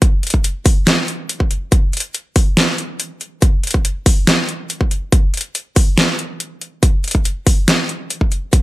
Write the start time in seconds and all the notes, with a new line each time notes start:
0.02 kick, closed hi-hat
0.23 closed hi-hat
0.27 closed hi-hat
0.30 kick, closed hi-hat
0.44 closed hi-hat
0.66 kick, open hi-hat
0.87 snare, closed hi-hat
1.08 closed hi-hat
1.29 closed hi-hat
1.40 kick
1.51 closed hi-hat
1.72 kick, closed hi-hat
1.93 closed hi-hat
1.97 closed hi-hat
2.00 closed hi-hat
2.15 closed hi-hat
2.36 kick, open hi-hat
2.57 snare, closed hi-hat
2.78 closed hi-hat
3.00 closed hi-hat
3.21 closed hi-hat
3.42 kick, closed hi-hat
3.63 closed hi-hat
3.67 closed hi-hat
3.71 kick, closed hi-hat
3.85 closed hi-hat
4.06 kick, open hi-hat
4.27 snare, closed hi-hat
4.49 closed hi-hat
4.70 closed hi-hat
4.81 kick
4.91 closed hi-hat
5.12 kick, closed hi-hat
5.34 closed hi-hat
5.37 closed hi-hat
5.41 closed hi-hat
5.55 closed hi-hat
5.76 kick, open hi-hat
5.98 snare, closed hi-hat
6.19 closed hi-hat
6.40 closed hi-hat
6.61 closed hi-hat
6.83 kick, closed hi-hat
7.04 closed hi-hat
7.08 closed hi-hat
7.11 kick, closed hi-hat
7.25 closed hi-hat
7.47 kick, open hi-hat
7.68 snare, closed hi-hat
7.89 closed hi-hat
8.10 closed hi-hat
8.21 kick
8.32 closed hi-hat
8.53 kick, closed hi-hat